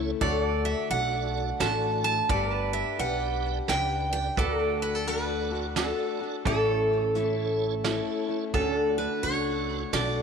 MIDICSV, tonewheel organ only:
0, 0, Header, 1, 2, 480
1, 0, Start_track
1, 0, Key_signature, 2, "major"
1, 0, Tempo, 694284
1, 148, Time_signature, 3, 2, 24, 8
1, 7068, End_track
2, 0, Start_track
2, 0, Title_t, "Tonewheel organ"
2, 0, Program_c, 0, 16
2, 0, Note_on_c, 0, 64, 78
2, 0, Note_on_c, 0, 69, 66
2, 0, Note_on_c, 0, 73, 79
2, 78, Note_off_c, 0, 64, 0
2, 78, Note_off_c, 0, 73, 0
2, 79, Note_off_c, 0, 69, 0
2, 622, Note_on_c, 0, 66, 60
2, 622, Note_on_c, 0, 69, 51
2, 624, Note_on_c, 0, 74, 71
2, 1037, Note_off_c, 0, 66, 0
2, 1037, Note_off_c, 0, 69, 0
2, 1038, Note_off_c, 0, 74, 0
2, 1104, Note_on_c, 0, 66, 63
2, 1105, Note_on_c, 0, 69, 57
2, 1106, Note_on_c, 0, 74, 72
2, 1518, Note_off_c, 0, 66, 0
2, 1519, Note_off_c, 0, 69, 0
2, 1519, Note_off_c, 0, 74, 0
2, 2065, Note_on_c, 0, 71, 55
2, 2066, Note_on_c, 0, 67, 59
2, 2066, Note_on_c, 0, 74, 68
2, 2479, Note_off_c, 0, 67, 0
2, 2479, Note_off_c, 0, 71, 0
2, 2479, Note_off_c, 0, 74, 0
2, 2546, Note_on_c, 0, 67, 62
2, 2546, Note_on_c, 0, 71, 59
2, 2549, Note_on_c, 0, 74, 68
2, 2959, Note_off_c, 0, 67, 0
2, 2959, Note_off_c, 0, 71, 0
2, 2960, Note_off_c, 0, 74, 0
2, 3507, Note_on_c, 0, 66, 60
2, 3507, Note_on_c, 0, 69, 53
2, 3507, Note_on_c, 0, 74, 65
2, 3919, Note_off_c, 0, 66, 0
2, 3919, Note_off_c, 0, 74, 0
2, 3920, Note_off_c, 0, 69, 0
2, 3984, Note_on_c, 0, 66, 69
2, 3986, Note_on_c, 0, 69, 59
2, 3987, Note_on_c, 0, 74, 76
2, 4398, Note_off_c, 0, 66, 0
2, 4399, Note_off_c, 0, 69, 0
2, 4400, Note_off_c, 0, 74, 0
2, 4945, Note_on_c, 0, 69, 60
2, 4946, Note_on_c, 0, 64, 62
2, 4947, Note_on_c, 0, 73, 66
2, 5358, Note_off_c, 0, 69, 0
2, 5359, Note_off_c, 0, 64, 0
2, 5359, Note_off_c, 0, 73, 0
2, 5424, Note_on_c, 0, 64, 79
2, 5424, Note_on_c, 0, 69, 70
2, 5425, Note_on_c, 0, 73, 82
2, 5838, Note_off_c, 0, 64, 0
2, 5838, Note_off_c, 0, 69, 0
2, 5839, Note_off_c, 0, 73, 0
2, 6382, Note_on_c, 0, 66, 58
2, 6382, Note_on_c, 0, 69, 54
2, 6384, Note_on_c, 0, 62, 70
2, 6797, Note_off_c, 0, 66, 0
2, 6797, Note_off_c, 0, 69, 0
2, 6798, Note_off_c, 0, 62, 0
2, 6863, Note_on_c, 0, 66, 60
2, 6865, Note_on_c, 0, 69, 58
2, 6866, Note_on_c, 0, 74, 73
2, 7068, Note_off_c, 0, 66, 0
2, 7068, Note_off_c, 0, 69, 0
2, 7068, Note_off_c, 0, 74, 0
2, 7068, End_track
0, 0, End_of_file